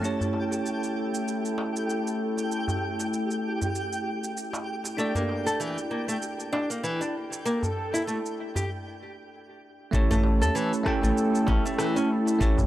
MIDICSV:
0, 0, Header, 1, 8, 480
1, 0, Start_track
1, 0, Tempo, 618557
1, 25, Time_signature, 4, 2, 24, 8
1, 9829, End_track
2, 0, Start_track
2, 0, Title_t, "Synth texture"
2, 0, Program_c, 0, 99
2, 23, Note_on_c, 0, 67, 79
2, 25, Note_on_c, 0, 79, 76
2, 6744, Note_off_c, 0, 67, 0
2, 6745, Note_off_c, 0, 79, 0
2, 9829, End_track
3, 0, Start_track
3, 0, Title_t, "Analog synth pad"
3, 0, Program_c, 1, 89
3, 26, Note_on_c, 1, 69, 78
3, 27, Note_on_c, 1, 57, 72
3, 27, Note_on_c, 1, 64, 66
3, 3835, Note_off_c, 1, 57, 0
3, 3835, Note_off_c, 1, 64, 0
3, 3835, Note_off_c, 1, 69, 0
3, 5786, Note_on_c, 1, 69, 79
3, 6736, Note_off_c, 1, 69, 0
3, 7702, Note_on_c, 1, 64, 72
3, 7704, Note_on_c, 1, 57, 80
3, 7704, Note_on_c, 1, 69, 86
3, 9829, Note_off_c, 1, 57, 0
3, 9829, Note_off_c, 1, 64, 0
3, 9829, Note_off_c, 1, 69, 0
3, 9829, End_track
4, 0, Start_track
4, 0, Title_t, "Tine electric piano"
4, 0, Program_c, 2, 4
4, 0, Control_c, 2, 64, 127
4, 12, Note_on_c, 2, 57, 64
4, 19, Note_on_c, 2, 61, 57
4, 26, Note_on_c, 2, 64, 57
4, 34, Control_c, 2, 64, 0
4, 34, Note_on_c, 2, 67, 56
4, 42, Note_on_c, 2, 73, 73
4, 187, Control_c, 2, 64, 127
4, 3833, Note_off_c, 2, 57, 0
4, 3837, Note_off_c, 2, 61, 0
4, 3840, Note_off_c, 2, 64, 0
4, 3844, Note_off_c, 2, 67, 0
4, 3848, Note_off_c, 2, 73, 0
4, 3858, Note_on_c, 2, 62, 59
4, 3874, Note_on_c, 2, 69, 57
4, 3875, Control_c, 2, 64, 0
4, 3882, Note_on_c, 2, 74, 73
4, 3990, Control_c, 2, 64, 127
4, 7676, Note_off_c, 2, 62, 0
4, 7684, Note_off_c, 2, 69, 0
4, 7689, Note_off_c, 2, 74, 0
4, 7692, Note_on_c, 2, 57, 78
4, 7701, Note_on_c, 2, 61, 71
4, 7708, Note_on_c, 2, 64, 68
4, 7714, Control_c, 2, 64, 0
4, 7715, Note_on_c, 2, 67, 70
4, 7723, Note_on_c, 2, 73, 89
4, 7859, Control_c, 2, 64, 127
4, 8393, Note_off_c, 2, 57, 0
4, 8398, Note_off_c, 2, 61, 0
4, 8401, Note_off_c, 2, 64, 0
4, 8405, Note_off_c, 2, 67, 0
4, 8408, Note_on_c, 2, 57, 83
4, 8409, Note_off_c, 2, 73, 0
4, 8416, Note_on_c, 2, 61, 78
4, 8424, Note_on_c, 2, 64, 79
4, 8432, Note_on_c, 2, 67, 78
4, 8440, Note_on_c, 2, 79, 99
4, 9592, Note_off_c, 2, 57, 0
4, 9596, Note_off_c, 2, 61, 0
4, 9599, Note_off_c, 2, 64, 0
4, 9603, Note_off_c, 2, 67, 0
4, 9607, Note_off_c, 2, 79, 0
4, 9613, Note_on_c, 2, 57, 76
4, 9620, Note_on_c, 2, 61, 68
4, 9628, Note_on_c, 2, 64, 67
4, 9635, Note_on_c, 2, 67, 70
4, 9642, Note_on_c, 2, 73, 89
4, 9829, Note_off_c, 2, 57, 0
4, 9829, Note_off_c, 2, 61, 0
4, 9829, Note_off_c, 2, 64, 0
4, 9829, Note_off_c, 2, 67, 0
4, 9829, Note_off_c, 2, 73, 0
4, 9829, End_track
5, 0, Start_track
5, 0, Title_t, "Nylon-string guitar"
5, 0, Program_c, 3, 24
5, 3865, Note_on_c, 3, 57, 75
5, 3987, Note_off_c, 3, 57, 0
5, 4000, Note_on_c, 3, 58, 80
5, 4227, Note_off_c, 3, 58, 0
5, 4240, Note_on_c, 3, 69, 65
5, 4340, Note_off_c, 3, 69, 0
5, 4344, Note_on_c, 3, 52, 75
5, 4473, Note_off_c, 3, 52, 0
5, 4584, Note_on_c, 3, 58, 66
5, 4713, Note_off_c, 3, 58, 0
5, 4719, Note_on_c, 3, 57, 61
5, 4780, Note_off_c, 3, 57, 0
5, 5064, Note_on_c, 3, 62, 87
5, 5186, Note_off_c, 3, 62, 0
5, 5199, Note_on_c, 3, 58, 69
5, 5299, Note_off_c, 3, 58, 0
5, 5304, Note_on_c, 3, 52, 75
5, 5433, Note_off_c, 3, 52, 0
5, 5438, Note_on_c, 3, 62, 67
5, 5539, Note_off_c, 3, 62, 0
5, 5785, Note_on_c, 3, 58, 85
5, 5913, Note_off_c, 3, 58, 0
5, 6159, Note_on_c, 3, 64, 67
5, 6219, Note_off_c, 3, 64, 0
5, 6265, Note_on_c, 3, 57, 75
5, 6342, Note_off_c, 3, 57, 0
5, 6643, Note_on_c, 3, 67, 64
5, 6741, Note_off_c, 3, 67, 0
5, 7706, Note_on_c, 3, 57, 79
5, 7827, Note_off_c, 3, 57, 0
5, 7843, Note_on_c, 3, 57, 99
5, 8068, Note_off_c, 3, 57, 0
5, 8082, Note_on_c, 3, 69, 76
5, 8181, Note_off_c, 3, 69, 0
5, 8186, Note_on_c, 3, 52, 82
5, 8314, Note_off_c, 3, 52, 0
5, 8429, Note_on_c, 3, 57, 72
5, 8552, Note_off_c, 3, 57, 0
5, 8561, Note_on_c, 3, 57, 68
5, 8621, Note_off_c, 3, 57, 0
5, 8906, Note_on_c, 3, 61, 96
5, 9027, Note_off_c, 3, 61, 0
5, 9043, Note_on_c, 3, 57, 78
5, 9141, Note_off_c, 3, 57, 0
5, 9147, Note_on_c, 3, 52, 80
5, 9275, Note_off_c, 3, 52, 0
5, 9282, Note_on_c, 3, 61, 68
5, 9381, Note_off_c, 3, 61, 0
5, 9627, Note_on_c, 3, 57, 99
5, 9754, Note_off_c, 3, 57, 0
5, 9829, End_track
6, 0, Start_track
6, 0, Title_t, "Analog synth bass"
6, 0, Program_c, 4, 38
6, 7705, Note_on_c, 4, 33, 95
6, 8081, Note_on_c, 4, 40, 89
6, 8093, Note_off_c, 4, 33, 0
6, 8147, Note_off_c, 4, 40, 0
6, 8562, Note_on_c, 4, 33, 92
6, 8627, Note_off_c, 4, 33, 0
6, 8905, Note_on_c, 4, 33, 77
6, 8990, Note_off_c, 4, 33, 0
6, 9625, Note_on_c, 4, 33, 103
6, 9829, Note_off_c, 4, 33, 0
6, 9829, End_track
7, 0, Start_track
7, 0, Title_t, "Darbuka"
7, 161, Note_on_c, 9, 64, 75
7, 238, Note_off_c, 9, 64, 0
7, 257, Note_on_c, 9, 63, 57
7, 335, Note_off_c, 9, 63, 0
7, 398, Note_on_c, 9, 62, 51
7, 476, Note_off_c, 9, 62, 0
7, 1225, Note_on_c, 9, 63, 74
7, 1303, Note_off_c, 9, 63, 0
7, 1841, Note_on_c, 9, 63, 32
7, 1919, Note_off_c, 9, 63, 0
7, 2078, Note_on_c, 9, 64, 80
7, 2155, Note_off_c, 9, 64, 0
7, 2322, Note_on_c, 9, 62, 48
7, 2400, Note_off_c, 9, 62, 0
7, 2804, Note_on_c, 9, 63, 32
7, 2807, Note_on_c, 9, 64, 74
7, 2882, Note_off_c, 9, 63, 0
7, 2884, Note_off_c, 9, 64, 0
7, 3518, Note_on_c, 9, 63, 79
7, 3596, Note_off_c, 9, 63, 0
7, 3756, Note_on_c, 9, 62, 53
7, 3834, Note_off_c, 9, 62, 0
7, 3997, Note_on_c, 9, 64, 83
7, 4074, Note_off_c, 9, 64, 0
7, 4105, Note_on_c, 9, 63, 54
7, 4182, Note_off_c, 9, 63, 0
7, 4238, Note_on_c, 9, 62, 44
7, 4316, Note_off_c, 9, 62, 0
7, 5065, Note_on_c, 9, 63, 76
7, 5143, Note_off_c, 9, 63, 0
7, 5679, Note_on_c, 9, 63, 31
7, 5756, Note_off_c, 9, 63, 0
7, 5919, Note_on_c, 9, 64, 78
7, 5996, Note_off_c, 9, 64, 0
7, 6165, Note_on_c, 9, 62, 41
7, 6242, Note_off_c, 9, 62, 0
7, 6638, Note_on_c, 9, 63, 28
7, 6639, Note_on_c, 9, 64, 75
7, 6715, Note_off_c, 9, 63, 0
7, 6717, Note_off_c, 9, 64, 0
7, 7842, Note_on_c, 9, 64, 82
7, 7919, Note_off_c, 9, 64, 0
7, 7942, Note_on_c, 9, 63, 67
7, 8019, Note_off_c, 9, 63, 0
7, 8081, Note_on_c, 9, 62, 57
7, 8158, Note_off_c, 9, 62, 0
7, 8898, Note_on_c, 9, 63, 81
7, 8976, Note_off_c, 9, 63, 0
7, 9521, Note_on_c, 9, 63, 39
7, 9598, Note_off_c, 9, 63, 0
7, 9761, Note_on_c, 9, 64, 98
7, 9829, Note_off_c, 9, 64, 0
7, 9829, End_track
8, 0, Start_track
8, 0, Title_t, "Drums"
8, 33, Note_on_c, 9, 82, 52
8, 111, Note_off_c, 9, 82, 0
8, 168, Note_on_c, 9, 82, 29
8, 246, Note_off_c, 9, 82, 0
8, 407, Note_on_c, 9, 82, 59
8, 485, Note_off_c, 9, 82, 0
8, 513, Note_on_c, 9, 82, 45
8, 590, Note_off_c, 9, 82, 0
8, 648, Note_on_c, 9, 82, 27
8, 725, Note_off_c, 9, 82, 0
8, 889, Note_on_c, 9, 82, 57
8, 966, Note_off_c, 9, 82, 0
8, 994, Note_on_c, 9, 82, 48
8, 1071, Note_off_c, 9, 82, 0
8, 1128, Note_on_c, 9, 82, 30
8, 1206, Note_off_c, 9, 82, 0
8, 1368, Note_on_c, 9, 82, 53
8, 1446, Note_off_c, 9, 82, 0
8, 1473, Note_on_c, 9, 82, 49
8, 1550, Note_off_c, 9, 82, 0
8, 1609, Note_on_c, 9, 82, 28
8, 1687, Note_off_c, 9, 82, 0
8, 1849, Note_on_c, 9, 82, 56
8, 1926, Note_off_c, 9, 82, 0
8, 1953, Note_on_c, 9, 82, 52
8, 2031, Note_off_c, 9, 82, 0
8, 2087, Note_on_c, 9, 82, 27
8, 2165, Note_off_c, 9, 82, 0
8, 2327, Note_on_c, 9, 82, 64
8, 2404, Note_off_c, 9, 82, 0
8, 2433, Note_on_c, 9, 82, 47
8, 2510, Note_off_c, 9, 82, 0
8, 2568, Note_on_c, 9, 82, 31
8, 2646, Note_off_c, 9, 82, 0
8, 2808, Note_on_c, 9, 82, 59
8, 2886, Note_off_c, 9, 82, 0
8, 2912, Note_on_c, 9, 82, 47
8, 2990, Note_off_c, 9, 82, 0
8, 3048, Note_on_c, 9, 82, 32
8, 3126, Note_off_c, 9, 82, 0
8, 3289, Note_on_c, 9, 82, 58
8, 3367, Note_off_c, 9, 82, 0
8, 3393, Note_on_c, 9, 82, 50
8, 3471, Note_off_c, 9, 82, 0
8, 3527, Note_on_c, 9, 82, 32
8, 3604, Note_off_c, 9, 82, 0
8, 3766, Note_on_c, 9, 82, 65
8, 3843, Note_off_c, 9, 82, 0
8, 3872, Note_on_c, 9, 82, 52
8, 3950, Note_off_c, 9, 82, 0
8, 4006, Note_on_c, 9, 82, 31
8, 4083, Note_off_c, 9, 82, 0
8, 4245, Note_on_c, 9, 82, 66
8, 4323, Note_off_c, 9, 82, 0
8, 4351, Note_on_c, 9, 82, 50
8, 4428, Note_off_c, 9, 82, 0
8, 4485, Note_on_c, 9, 82, 30
8, 4562, Note_off_c, 9, 82, 0
8, 4725, Note_on_c, 9, 82, 62
8, 4803, Note_off_c, 9, 82, 0
8, 4829, Note_on_c, 9, 82, 52
8, 4907, Note_off_c, 9, 82, 0
8, 4965, Note_on_c, 9, 82, 30
8, 5043, Note_off_c, 9, 82, 0
8, 5205, Note_on_c, 9, 82, 63
8, 5283, Note_off_c, 9, 82, 0
8, 5311, Note_on_c, 9, 82, 53
8, 5389, Note_off_c, 9, 82, 0
8, 5446, Note_on_c, 9, 82, 30
8, 5524, Note_off_c, 9, 82, 0
8, 5686, Note_on_c, 9, 82, 67
8, 5764, Note_off_c, 9, 82, 0
8, 5790, Note_on_c, 9, 82, 51
8, 5868, Note_off_c, 9, 82, 0
8, 5927, Note_on_c, 9, 82, 30
8, 6005, Note_off_c, 9, 82, 0
8, 6168, Note_on_c, 9, 82, 68
8, 6246, Note_off_c, 9, 82, 0
8, 6272, Note_on_c, 9, 82, 51
8, 6350, Note_off_c, 9, 82, 0
8, 6408, Note_on_c, 9, 82, 28
8, 6485, Note_off_c, 9, 82, 0
8, 6649, Note_on_c, 9, 82, 63
8, 6726, Note_off_c, 9, 82, 0
8, 7705, Note_on_c, 9, 36, 114
8, 7714, Note_on_c, 9, 82, 56
8, 7783, Note_off_c, 9, 36, 0
8, 7792, Note_off_c, 9, 82, 0
8, 7850, Note_on_c, 9, 82, 34
8, 7928, Note_off_c, 9, 82, 0
8, 8090, Note_on_c, 9, 82, 69
8, 8167, Note_off_c, 9, 82, 0
8, 8194, Note_on_c, 9, 82, 53
8, 8272, Note_off_c, 9, 82, 0
8, 8329, Note_on_c, 9, 82, 30
8, 8407, Note_off_c, 9, 82, 0
8, 8425, Note_on_c, 9, 36, 99
8, 8427, Note_on_c, 9, 37, 79
8, 8503, Note_off_c, 9, 36, 0
8, 8505, Note_off_c, 9, 37, 0
8, 8569, Note_on_c, 9, 82, 68
8, 8647, Note_off_c, 9, 82, 0
8, 8673, Note_on_c, 9, 82, 55
8, 8750, Note_off_c, 9, 82, 0
8, 8809, Note_on_c, 9, 82, 34
8, 8886, Note_off_c, 9, 82, 0
8, 8905, Note_on_c, 9, 36, 104
8, 8983, Note_off_c, 9, 36, 0
8, 9049, Note_on_c, 9, 82, 62
8, 9127, Note_off_c, 9, 82, 0
8, 9145, Note_on_c, 9, 37, 83
8, 9152, Note_on_c, 9, 82, 57
8, 9223, Note_off_c, 9, 37, 0
8, 9230, Note_off_c, 9, 82, 0
8, 9289, Note_on_c, 9, 82, 31
8, 9366, Note_off_c, 9, 82, 0
8, 9527, Note_on_c, 9, 82, 67
8, 9605, Note_off_c, 9, 82, 0
8, 9625, Note_on_c, 9, 36, 120
8, 9633, Note_on_c, 9, 82, 59
8, 9703, Note_off_c, 9, 36, 0
8, 9711, Note_off_c, 9, 82, 0
8, 9767, Note_on_c, 9, 82, 35
8, 9829, Note_off_c, 9, 82, 0
8, 9829, End_track
0, 0, End_of_file